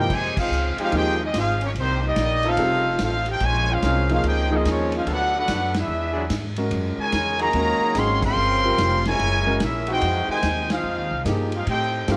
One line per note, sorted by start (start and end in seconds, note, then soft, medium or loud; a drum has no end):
0.00 0.11 E4 medium
0.00 0.10 A#4 medium
0.00 0.11 C5 medium
0.00 0.10 G5 loud
0.10 0.35 F2 medium
0.10 0.38 C3 loud
0.10 0.38 D#3 loud
0.10 0.37 G#3 loud
0.10 kick medium
0.10 crash medium
0.14 0.39 D#4 loud
0.14 0.39 G4 loud
0.14 0.39 C5 medium
0.14 0.39 G#5 loud
0.37 0.76 G#3 medium
0.37 0.76 C4 medium
0.37 0.77 D#4 medium
0.37 0.76 F4 medium
0.37 0.77 G#4 loud
0.37 0.77 C5 medium
0.37 0.76 F5 loud
0.37 muted upright bass stroke soft
0.37 kick loud
0.37 crash medium
0.50 0.76 C#2 medium
0.50 hi-hat pedal medium
0.77 1.31 F3 loud
0.77 1.30 G#3 loud
0.77 0.93 G#3 medium
0.77 0.93 C4 medium
0.77 1.31 D#4 medium
0.77 1.31 G4 loud
0.77 muted upright bass stroke soft
0.77 ride medium
0.81 0.94 D#4 medium
0.81 0.93 F4 medium
0.81 0.94 G#4 medium
0.81 0.94 C5 medium
0.81 0.94 F5 loud
0.92 1.32 D#2 medium
0.92 1.17 F3 medium
0.92 1.16 A#3 medium
0.92 1.19 C4 medium
0.92 1.17 D#4 medium
0.92 1.19 D#4 medium
0.92 1.19 G4 medium
0.92 1.16 G#4 medium
0.92 kick soft
0.92 ride medium
0.96 1.19 D#4 loud
0.96 1.20 G#4 loud
0.96 1.20 C5 loud
0.96 1.20 G5 loud
1.21 1.32 G#3 medium
1.21 1.33 C4 medium
1.21 1.36 C4 medium
1.21 1.35 D#4 medium
1.21 1.36 G4 medium
1.21 1.36 D#5 medium
1.25 1.36 G#4 medium
1.33 1.74 G#1 medium
1.33 1.58 G#3 medium
1.33 1.59 C4 medium
1.33 1.59 F4 medium
1.33 kick soft
1.33 snare medium
1.33 hi-hat pedal medium
1.33 ride medium
1.38 1.61 D#4 medium
1.38 1.62 G#4 medium
1.38 1.61 C5 medium
1.38 1.61 F5 loud
1.61 1.70 A#3 medium
1.61 1.67 C#4 medium
1.61 ride medium
1.65 1.71 D#4 medium
1.65 1.71 G4 medium
1.65 1.71 C#5 medium
1.75 2.15 C2 medium
1.75 2.01 D#3 medium
1.75 2.01 G3 medium
1.75 2.01 C4 medium
1.75 kick soft
1.75 ride medium
1.80 2.03 A#3 medium
1.80 2.03 D#4 medium
1.80 2.03 G4 medium
1.80 2.03 C5 loud
2.03 2.45 G3 medium
2.03 2.44 A#3 medium
2.03 2.46 A#3 medium
2.03 2.44 D#4 medium
2.03 2.46 G4 medium
2.07 2.46 D5 medium
2.07 2.46 D#5 loud
2.16 2.56 A#1 loud
2.16 kick soft
2.16 snare medium
2.16 hi-hat pedal medium
2.16 ride medium
2.42 2.96 C#3 loud
2.42 2.96 F3 loud
2.42 3.00 A3 medium
2.42 3.00 C4 medium
2.42 2.96 D#4 loud
2.42 3.00 F4 loud
2.42 2.96 A4 loud
2.42 ride medium
2.48 3.02 D#4 medium
2.48 3.02 A4 loud
2.48 3.01 C5 loud
2.48 3.02 F5 loud
2.57 2.97 F1 medium
2.57 2.82 G3 medium
2.57 2.82 C4 medium
2.57 2.82 F4 medium
2.57 2.82 A4 medium
2.57 kick soft
2.57 ride medium
2.99 3.39 A1 medium
2.99 kick soft
2.99 snare medium
2.99 hi-hat pedal medium
2.99 ride medium
3.03 3.26 A3 medium
3.03 3.26 C4 medium
3.03 3.27 D#4 medium
3.03 3.26 F4 medium
3.03 3.27 A4 medium
3.03 3.27 C5 medium
3.03 3.27 F5 loud
3.26 3.42 G4 medium
3.26 ride medium
3.31 3.43 D#4 medium
3.31 3.43 A4 medium
3.31 3.43 C5 medium
3.31 3.43 G5 loud
3.40 3.81 A#1 loud
3.40 3.69 C#3 loud
3.40 3.69 F3 loud
3.40 3.68 G#3 medium
3.40 kick soft
3.40 ride medium
3.45 3.70 F4 loud
3.45 3.70 C5 medium
3.45 3.70 C#5 loud
3.45 3.70 G#5 loud
3.70 4.10 G#3 medium
3.70 4.10 C#4 medium
3.70 4.11 C#4 medium
3.70 4.11 F4 medium
3.70 4.12 G#4 medium
3.70 4.12 C5 medium
3.70 4.12 F5 loud
3.82 4.22 C2 loud
3.82 4.45 G#3 medium
3.82 4.45 C4 medium
3.82 4.45 C#4 medium
3.82 4.45 A#4 loud
3.82 kick soft
3.82 snare medium
3.82 hi-hat pedal medium
3.82 ride medium
4.09 4.48 F3 medium
4.09 4.24 G#3 medium
4.09 4.48 A#3 medium
4.09 4.24 C#4 medium
4.09 4.25 C#4 medium
4.09 4.48 D#4 medium
4.09 4.24 F4 medium
4.09 4.49 G#4 medium
4.09 4.24 G#4 medium
4.09 4.24 C5 medium
4.09 4.24 F5 loud
4.09 ride medium
4.23 4.63 C#2 medium
4.23 4.52 G4 medium
4.23 kick soft
4.23 ride medium
4.28 4.52 D#4 medium
4.28 4.53 G#4 medium
4.28 4.53 C5 medium
4.28 4.53 G5 loud
4.51 5.03 F3 medium
4.51 5.04 A#3 medium
4.51 4.67 C4 medium
4.51 5.04 D#4 medium
4.51 4.67 D#4 medium
4.51 5.04 G#4 loud
4.51 4.67 G#4 medium
4.55 4.67 F4 medium
4.55 4.67 D#5 medium
4.65 5.05 D#2 loud
4.65 4.92 F3 medium
4.65 4.93 G#3 medium
4.65 4.93 C#4 medium
4.65 kick soft
4.65 snare medium
4.65 hi-hat pedal medium
4.65 ride medium
4.71 4.95 G#3 medium
4.71 4.95 C4 medium
4.71 4.95 F4 medium
4.71 4.95 C#5 medium
4.92 5.07 G#3 medium
4.92 5.07 C#4 medium
4.92 5.07 F4 medium
4.92 ride medium
4.98 5.08 C#4 medium
4.98 5.08 G#4 medium
4.98 5.08 C5 medium
4.98 5.08 F5 medium
5.06 5.46 D2 medium
5.06 5.69 F#3 loud
5.06 5.34 A3 medium
5.06 5.69 B3 medium
5.06 5.69 D4 loud
5.06 5.34 D4 medium
5.06 5.34 F#4 medium
5.06 5.69 A4 loud
5.06 kick soft
5.06 ride medium
5.13 5.36 D4 medium
5.13 5.36 A4 medium
5.13 5.37 B4 medium
5.13 5.36 F#5 loud
5.35 5.73 A3 medium
5.35 5.73 D4 medium
5.35 5.74 D4 medium
5.35 5.72 F#4 medium
5.35 5.74 A4 medium
5.39 5.75 B4 medium
5.39 5.75 F#5 loud
5.48 5.87 F#2 loud
5.48 kick soft
5.48 snare medium
5.48 hi-hat pedal medium
5.48 ride medium
5.74 6.31 G#3 medium
5.74 6.31 B3 medium
5.74 6.31 E4 medium
5.74 snare medium
5.74 ride medium
5.79 6.32 D4 medium
5.79 6.32 G#4 medium
5.79 6.32 B4 medium
5.79 6.32 E5 loud
5.88 6.28 E2 medium
6.13 6.24 F#3 loud
6.13 6.24 D4 loud
6.13 6.24 E4 loud
6.13 6.24 G#4 loud
6.30 6.70 G#2 medium
6.30 kick soft
6.30 snare medium
6.30 hi-hat pedal medium
6.30 ride medium
6.56 7.10 G#3 medium
6.56 7.10 C#4 medium
6.56 7.10 F#4 medium
6.56 7.10 A#4 medium
6.56 ride medium
6.71 6.96 F#2 medium
6.71 kick soft
6.71 ride medium
6.97 7.37 C#3 medium
6.97 7.37 D#3 medium
6.97 7.37 G#3 medium
6.97 7.38 D#4 medium
6.97 7.38 A#4 medium
6.97 7.38 C#5 medium
6.97 7.38 G#5 loud
6.97 muted upright bass stroke soft
7.12 7.53 E2 medium
7.12 kick soft
7.12 snare medium
7.12 hi-hat pedal medium
7.12 ride medium
7.38 7.96 C#3 medium
7.38 7.96 D#3 loud
7.38 7.48 F#3 loud
7.38 7.49 A#3 loud
7.38 7.95 A#3 medium
7.38 7.48 D#4 loud
7.38 7.49 G#4 loud
7.38 7.96 G#4 loud
7.38 7.96 C#5 medium
7.38 7.96 D#5 loud
7.38 7.96 A#5 loud
7.38 ride medium
7.53 7.79 D#2 medium
7.53 7.78 G#3 medium
7.53 7.79 C#4 medium
7.53 7.79 F#4 medium
7.53 7.79 A#4 medium
7.53 kick soft
7.53 ride medium
7.80 8.34 F#3 loud
7.80 8.34 A#3 medium
7.80 8.33 D#4 loud
7.80 8.34 G#4 loud
7.80 muted upright bass stroke soft
7.95 8.35 G#1 medium
7.95 8.36 G#3 medium
7.95 8.22 C4 loud
7.95 8.37 C#4 medium
7.95 8.37 F#4 medium
7.95 8.37 G#4 medium
7.95 8.24 G#4 medium
7.95 8.23 C#5 loud
7.95 8.23 C6 loud
7.95 kick soft
7.95 snare medium
7.95 hi-hat pedal medium
7.95 ride medium
7.99 8.24 F5 medium
8.22 9.01 C#3 medium
8.22 9.01 F3 loud
8.22 9.01 C4 medium
8.22 9.02 A#4 loud
8.22 9.03 F5 loud
8.22 9.02 G5 loud
8.22 9.02 C6 loud
8.22 kick medium
8.22 crash medium
8.36 8.76 G1 medium
8.65 9.17 G3 medium
8.65 9.17 C4 medium
8.65 9.17 F4 medium
8.65 9.17 A#4 medium
8.78 9.18 F1 medium
8.78 kick soft
8.78 snare medium
8.78 hi-hat pedal medium
8.78 ride medium
9.05 9.57 C#3 medium
9.05 9.57 E3 medium
9.05 9.57 G#3 medium
9.05 9.58 E4 loud
9.05 9.58 A#4 loud
9.05 9.59 C#5 loud
9.05 9.58 G#5 loud
9.05 snare medium
9.05 ride medium
9.19 9.59 F#1 medium
9.19 kick soft
9.19 ride medium
9.46 9.59 G#3 medium
9.46 9.59 C#4 medium
9.46 9.59 F#4 medium
9.46 9.59 A#4 medium
9.60 10.00 A#1 medium
9.60 9.87 A#3 medium
9.60 9.88 C#4 medium
9.60 9.88 E4 medium
9.60 9.89 E5 medium
9.60 kick soft
9.60 snare medium
9.60 hi-hat pedal medium
9.60 ride medium
9.64 9.89 C#4 medium
9.64 9.89 G#4 medium
9.64 9.89 A#4 medium
9.86 10.39 E3 loud
9.86 10.39 G#3 loud
9.86 10.27 C4 medium
9.86 10.39 D#4 medium
9.86 10.27 D#4 medium
9.86 10.40 F#4 loud
9.86 10.26 F#4 medium
9.86 ride medium
9.91 10.28 D#4 medium
9.91 10.28 G#4 medium
9.91 10.28 C5 medium
9.91 10.28 G5 loud
10.02 10.27 F2 medium
10.02 kick soft
10.02 ride medium
10.28 10.68 C3 medium
10.28 10.68 D#3 medium
10.28 10.68 G#3 medium
10.28 10.68 D#4 medium
10.28 10.68 C5 medium
10.28 10.69 G5 medium
10.28 10.68 G#5 loud
10.28 muted upright bass stroke soft
10.43 10.83 D#2 loud
10.43 kick soft
10.43 snare medium
10.43 hi-hat pedal medium
10.43 ride medium
10.70 11.22 G#3 medium
10.70 11.22 C4 medium
10.70 11.22 D#4 medium
10.70 11.22 F4 medium
10.70 11.22 G#4 loud
10.70 11.22 C5 medium
10.70 11.22 F5 loud
10.70 snare loud
10.70 ride medium
10.84 10.98 F2 medium
10.98 11.10 D#2 medium
11.11 11.24 C2 medium
11.25 11.65 G2 medium
11.25 11.49 F3 medium
11.25 11.66 F3 loud
11.25 11.49 A#3 medium
11.25 11.50 D#4 medium
11.25 11.67 D#4 medium
11.25 11.67 G4 loud
11.25 11.67 G#4 medium
11.25 11.50 G#4 medium
11.25 kick soft
11.25 snare medium
11.25 hi-hat pedal medium
11.25 ride medium
11.52 11.67 G#3 medium
11.52 11.67 C4 medium
11.52 11.67 F4 medium
11.52 ride medium
11.56 11.68 D#4 medium
11.56 11.68 G#4 medium
11.56 11.68 C5 medium
11.56 11.68 F5 medium
11.67 12.07 A2 medium
11.67 12.07 C4 medium
11.67 12.06 D#4 medium
11.67 12.06 G4 medium
11.67 12.07 A4 medium
11.67 12.07 C5 medium
11.67 12.07 G5 loud
11.67 kick soft
11.67 ride medium
12.07 12.17 G2 medium
12.07 12.17 D#3 medium
12.07 12.17 G3 medium
12.07 12.17 A3 medium
12.07 12.17 C4 medium
12.07 12.17 D4 medium
12.07 12.17 F4 medium
12.07 12.17 G4 medium
12.07 12.17 A4 medium
12.07 12.17 A#4 medium
12.07 12.17 F5 medium
12.07 kick soft
12.07 snare medium
12.07 hi-hat pedal medium
12.07 ride medium